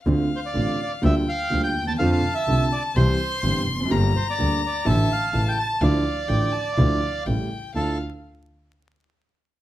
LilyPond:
<<
  \new Staff \with { instrumentName = "Violin" } { \time 4/4 \key d \minor \tempo 4 = 125 f''2 g''2 | a''2 c'''2 | bes''2 a''4 a''4 | f''4 g''8 a''8 f''4 g''4 |
f''8 r2. r8 | }
  \new Staff \with { instrumentName = "Bandoneon" } { \time 4/4 \key d \minor r8 c''16 d''8. d''8 e''8 f''8. g''8 a''16 | f''16 f''8 e''8. d''8 c''4. r8 | r8 c''16 d''8. d''8 e''8 f''8. g''16 a''8 | d''2. r4 |
a'8 r2. r8 | }
  \new Staff \with { instrumentName = "Grand piano" } { \clef bass \time 4/4 \key d \minor <d, d a c' f'>8 r8 <a,, a, d a c' f'>8 r8 <d, d g bes f'>8 r8 <d, d g bes f'>8 r32 d,32 ees,32 e,32 | <f, d f a c' f'>8 r8 <c, c d a c' f'>8 r8 <c, c e g c' g'>8 r8 <g,, g, e g c' g'>8 r32 e,32 f,32 fis,32 | <g,, g, d g bes g'>8 r8 <d, d g bes g'>8 r8 <a,, a, d e a e'>8 r8 <a,, a, cis e a e'>8 r8 | <d, d f a e'>8 r8 <a,, a, d f a e'>8 r8 <d, d f a e'>8 r8 <a,, a, cis g a e'>8 r8 |
<d, d' e' f'>8 r2. r8 | }
  \new Staff \with { instrumentName = "Double bass" } { \clef bass \time 4/4 \key d \minor d,8 r8 a,,8 r8 d,8 r8 d,8 ees,8 | f,8 r8 c,8 r8 c,8 r8 g,,8 f,,8 | g,,8 r8 d,8 r8 a,,8 r8 a,,8 r8 | d,8 r8 a,,8 r8 d,8 r8 a,,8 r8 |
d,8 r2. r8 | }
>>